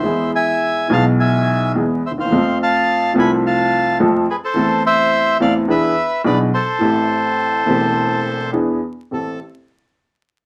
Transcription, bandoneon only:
0.00 0.31 C5 medium
0.00 0.31 E5 medium
0.35 0.88 E5 medium
0.35 0.93 G#5 medium
0.92 1.05 F5 medium
0.92 1.05 A5 medium
1.20 1.72 E5 medium
1.20 1.72 G#5 medium
2.06 2.12 C5 soft
2.06 2.12 E5 medium
2.20 2.58 C5 medium
2.20 2.58 F5 medium
2.62 3.13 F5 medium
2.62 3.14 A5 medium
3.19 3.31 G#5 medium
3.19 3.31 B5 medium
3.46 3.97 F5 medium
3.46 3.98 A5 medium
4.30 4.36 G#4 medium
4.30 4.36 B4 medium
4.44 4.82 A4 medium
4.44 4.83 C5 medium
4.86 5.37 C5 medium
4.86 5.37 E5 loud
5.42 5.54 D5 medium
5.42 5.54 F5 medium
5.70 6.22 B4 medium
5.70 6.22 E5 medium
6.26 6.39 B4 medium
6.26 6.38 D5 medium
6.54 8.51 A4 medium
6.54 8.50 C5 medium
9.13 9.39 A4 medium

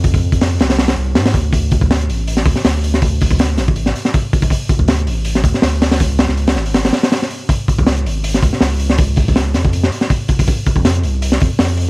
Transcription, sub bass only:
0.00 0.31 F2 medium
0.32 0.61 F2 loud
0.60 0.96 C2 medium
0.97 1.17 C2 medium
1.16 1.36 G#2 medium
1.34 1.80 D2 loud
1.81 2.10 D2 loud
2.09 2.45 A1 medium
2.46 2.55 D2 medium
2.65 3.29 D2 loud
3.31 3.59 D2 loud
3.58 3.94 A1 medium
4.79 5.09 D2 loud
5.07 5.43 A1 medium
5.44 5.53 D2 medium
5.63 6.02 D2 loud
6.00 6.27 C#2 medium
6.29 6.58 C#2 loud
6.56 6.92 G#1 medium
7.78 8.06 C#2 loud
8.05 8.41 G#1 medium
8.43 8.51 C#2 medium
8.61 9.25 C#2 medium
9.28 9.56 C#2 loud
9.54 9.90 F2 medium
10.76 11.05 F2 loud
11.03 11.39 C2 medium
11.42 11.50 F2 medium
11.59 11.90 F2 loud

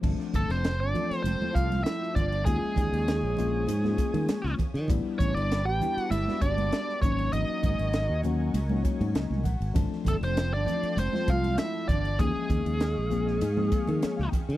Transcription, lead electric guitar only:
0.36 0.51 A4 medium
0.51 0.82 C5 medium
0.80 1.26 D5 medium
1.22 1.55 C5 medium
1.55 1.83 F5 medium
1.84 2.16 E5 medium
2.15 2.44 D5 medium
2.45 4.54 G#4 medium
5.19 5.34 C#5 medium
5.34 5.66 D5 medium
5.66 6.11 G5 loud
6.11 6.39 E5 medium
6.42 6.98 D5 medium
7.02 7.33 C#5 medium
7.33 8.20 D#5 medium
10.08 10.13 A4 medium
10.24 10.53 C5 medium
10.54 10.99 D5 medium
10.99 11.30 C5 medium
11.30 11.58 F5 medium
11.59 11.90 E5 medium
11.88 12.20 D5 medium
12.19 14.28 G#4 medium

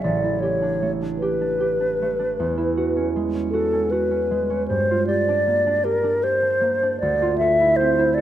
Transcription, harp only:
0.00 0.81 A3 soft
0.00 0.23 E4 soft
0.04 2.41 A1 soft
0.24 2.57 E4 soft
0.43 1.21 G4 soft
0.62 1.01 D4 soft
0.82 2.01 A3 soft
1.02 1.40 D4 soft
1.22 1.59 G4 soft
1.41 1.79 D4 soft
1.60 2.42 G4 soft
1.80 2.18 D4 soft
2.02 2.43 A3 soft
2.19 2.42 D4 soft
2.40 4.74 E2 soft
2.58 4.73 E4 soft
2.77 3.52 F#4 soft
2.96 3.34 C#4 soft
3.16 4.30 G#3 soft
3.35 3.71 C#4 soft
3.53 3.91 F#4 soft
3.73 4.09 C#4 soft
3.92 4.73 F#4 soft
4.11 4.49 C#4 soft
4.31 4.73 G#3 soft
4.50 4.73 C#4 soft
4.70 7.04 G2 soft
4.91 7.21 F4 soft
5.08 5.83 G4 soft
5.28 5.65 D4 soft
5.47 6.60 A#3 soft
5.67 6.02 D4 soft
5.85 6.22 G4 soft
6.04 6.41 D4 soft
6.24 7.04 G4 soft
6.42 6.81 D4 soft
6.61 7.03 A#3 soft
6.83 8.21 D4 soft
7.02 8.21 D2 soft
7.22 8.21 F4 soft
7.41 8.16 A4 soft
7.60 7.98 E4 soft
7.80 8.21 C4 soft
7.99 8.21 E4 soft
8.18 8.21 A4 soft

